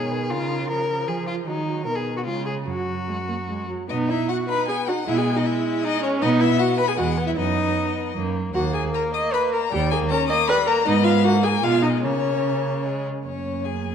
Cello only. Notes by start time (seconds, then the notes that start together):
Already playing: B2
0.31 C#3
1.08 F3
1.46 D#3
1.85 B2
2.26 C#3
2.66 F#2
3.90 B2
5.07 B2
6.22 B2
6.97 E2
7.37 F#2
8.15 F#2
8.54 D#2
9.72 D#2
10.86 G#2
11.63 B2
12.03 C#3
13.25 F#2